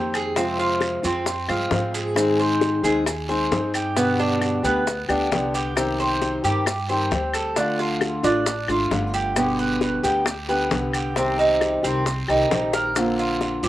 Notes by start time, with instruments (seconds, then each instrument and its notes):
Already playing: upright bass F2, nylon-string guitar D#3 A#3 C4 G4, cuban tres C5
0.14 cuban tres G#4, short guiro, claves, maracas
0.36 nylon-string guitar C3 F3 G#3 C4 F4, cuban tres C4, high bongo, long guiro, maracas
0.58 cuban tres F4, high bongo, maracas
0.81 high bongo, short guiro, claves, maracas
1.03 upright bass F2, nylon-string guitar F3 G#3 C4 F4, cuban tres C4, high bongo, short guiro, maracas
1.26 muted nylon-string guitar stroke, high bongo, long guiro, maracas
1.48 upright bass G2, nylon-string guitar F3 G#3 C4 F4, cuban tres F4, high bongo, claves, maracas
1.71 upright bass G#2, nylon-string guitar F3 G#3 C4 F4, high bongo, low bongo, short guiro, maracas
1.94 cuban tres G#4, short guiro, maracas
2.15 nylon-string guitar D#3 G#3 C4 D#4 G#4, high bongo, long guiro, claves, maracas
2.39 cuban tres C5, maracas
2.61 high bongo, short guiro, maracas
2.83 upright bass D#2, nylon-string guitar G#3 C4 D#4 G#4, cuban tres G#4, short guiro, maracas
3.06 muted nylon-string guitar stroke, high bongo, long guiro, claves, maracas
3.29 nylon-string guitar G#3 C4 D#4 G#4, cuban tres C5, maracas
3.51 upright bass G2, nylon-string guitar C4 D#4 G#4, high bongo, low bongo, short guiro, maracas
3.74 cuban tres G4, short guiro, claves, maracas
3.96 nylon-string guitar B2 D3 G3 B3 G4, cuban tres B3, high bongo, long guiro, maracas
4.19 cuban tres D4, high bongo, maracas
4.41 high bongo, short guiro, claves, maracas
4.63 upright bass D2, nylon-string guitar D3 G3 B3 G4, cuban tres B3, high bongo, short guiro, maracas
4.87 muted nylon-string guitar stroke, high bongo, long guiro, maracas
5.08 upright bass D2, nylon-string guitar D3 G3 B3 G4, cuban tres D4, high bongo, claves, maracas
5.31 upright bass C2, nylon-string guitar D3 G3 B3 G4, high bongo, low bongo, short guiro, maracas
5.54 cuban tres G4, short guiro, maracas
5.76 nylon-string guitar C3 D#3 G3 C4 G4, high bongo, long guiro, claves, maracas
6.00 cuban tres C5, maracas
6.21 high bongo, short guiro, maracas
6.44 upright bass G2, nylon-string guitar D#3 G3 C4 G4, cuban tres G4, short guiro, maracas
6.66 muted nylon-string guitar stroke, high bongo, long guiro, claves, maracas
6.89 nylon-string guitar D#3 G3 C4 G4, cuban tres C5, maracas
7.11 upright bass D2, nylon-string guitar G3 C4 G4, high bongo, low bongo, short guiro, maracas
7.34 cuban tres A4, short guiro, claves, maracas
7.56 nylon-string guitar D3 A3 D4 F4, cuban tres D4, high bongo, long guiro, maracas
7.79 cuban tres F4, high bongo, maracas
8.01 high bongo, short guiro, claves, maracas
8.23 upright bass A1, nylon-string guitar A3 D4 F4, cuban tres D4, high bongo, short guiro, maracas
8.46 muted nylon-string guitar stroke, high bongo, long guiro, maracas
8.68 upright bass G#1, nylon-string guitar A3 D4 F4, cuban tres F4, high bongo, claves, maracas
8.91 upright bass G1, nylon-string guitar D3 A3 D4 F4, high bongo, low bongo, short guiro, maracas
9.14 cuban tres G4, short guiro, maracas
9.36 nylon-string guitar B2 D3 G3 B3 G4, high bongo, long guiro, claves, maracas
9.59 cuban tres B4, maracas
9.81 high bongo, short guiro, maracas
10.03 upright bass D2, nylon-string guitar D3 G3 B3 G4, cuban tres G4, short guiro, maracas
10.26 muted nylon-string guitar stroke, high bongo, long guiro, claves, maracas
10.49 nylon-string guitar D3 G3 B3 G4, cuban tres B4, maracas
10.71 upright bass C2, nylon-string guitar D3 G3 B3 G4, high bongo, low bongo, short guiro, maracas
10.93 cuban tres G4, short guiro, claves, maracas
11.16 nylon-string guitar C3 D#3 G3 C4 G4, cuban tres C4, high bongo, long guiro, maracas
11.39 cuban tres D#4, high bongo, maracas
11.61 high bongo, short guiro, claves, maracas
11.83 upright bass C2, nylon-string guitar D#3 G3 C4 G4, cuban tres C4, high bongo, short guiro, maracas
12.06 muted nylon-string guitar stroke, high bongo, long guiro, maracas
12.28 upright bass C2, nylon-string guitar D#3 G3 C4 G4, cuban tres D#4, high bongo, claves, maracas
12.50 upright bass A#1, nylon-string guitar D#3 G3 C4 G4, high bongo, low bongo, short guiro, maracas
12.73 cuban tres A#4, high bongo, short guiro, maracas
12.95 nylon-string guitar D3 A#3 C4 F4, high bongo, long guiro, claves, maracas
13.19 cuban tres F4, maracas
13.41 high bongo, short guiro, maracas
13.63 upright bass G1, nylon-string guitar A#3 C4 F4, cuban tres G4, short guiro, maracas